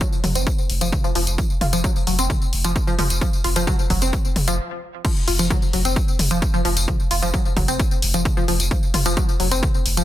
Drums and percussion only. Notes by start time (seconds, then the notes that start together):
0.01 kick, closed hi-hat, tambourine
0.12 tambourine
0.24 open hi-hat, mid tom
0.35 closed hi-hat, tambourine
0.47 kick, closed hi-hat, tambourine
0.58 tambourine
0.70 open hi-hat
0.81 closed hi-hat, tambourine
0.92 kick, closed hi-hat, mid tom
1.04 tambourine
1.15 open hi-hat
1.27 closed hi-hat, tambourine
1.38 kick, closed hi-hat, tambourine
1.50 tambourine
1.61 open hi-hat, mid tom
1.73 closed hi-hat, tambourine
1.84 kick, closed hi-hat, tambourine
1.96 tambourine
2.07 open hi-hat
2.19 closed hi-hat, tambourine
2.30 kick, closed hi-hat, mid tom, tambourine
2.42 tambourine
2.53 open hi-hat
2.64 closed hi-hat, tambourine
2.76 kick, closed hi-hat, tambourine
2.87 tambourine
2.99 open hi-hat, mid tom
3.10 closed hi-hat, tambourine
3.21 kick, closed hi-hat, tambourine
3.33 tambourine
3.44 open hi-hat
3.56 closed hi-hat, tambourine
3.67 kick, closed hi-hat, mid tom, tambourine
3.79 tambourine
3.90 kick, open hi-hat
4.02 closed hi-hat, tambourine
4.13 kick, closed hi-hat, tambourine
4.25 tambourine
4.36 open hi-hat, mid tom
4.48 closed hi-hat, tambourine
5.05 kick, closed hi-hat, crash, tambourine
5.16 tambourine
5.28 open hi-hat
5.39 closed hi-hat, tambourine
5.50 kick, closed hi-hat, mid tom, tambourine
5.62 tambourine
5.73 open hi-hat
5.85 closed hi-hat, tambourine
5.96 kick, closed hi-hat, tambourine
6.08 tambourine
6.19 open hi-hat, mid tom
6.31 closed hi-hat, tambourine
6.42 kick, closed hi-hat, tambourine
6.54 tambourine
6.65 open hi-hat
6.77 closed hi-hat, tambourine
6.88 kick, closed hi-hat, mid tom
7.00 tambourine
7.11 open hi-hat
7.22 closed hi-hat, tambourine
7.34 kick, closed hi-hat, tambourine
7.45 tambourine
7.57 kick, open hi-hat, mid tom
7.68 closed hi-hat, tambourine
7.79 kick, closed hi-hat, tambourine
7.91 tambourine
8.02 open hi-hat
8.14 closed hi-hat, tambourine
8.25 kick, closed hi-hat, mid tom, tambourine
8.37 tambourine
8.48 open hi-hat
8.60 closed hi-hat, tambourine
8.71 kick, closed hi-hat, tambourine
8.83 tambourine
8.94 open hi-hat, mid tom
9.06 closed hi-hat, tambourine
9.17 kick, closed hi-hat, tambourine
9.29 tambourine
9.40 open hi-hat
9.51 closed hi-hat, tambourine
9.63 kick, closed hi-hat, mid tom, tambourine
9.74 tambourine
9.86 open hi-hat
9.97 closed hi-hat, tambourine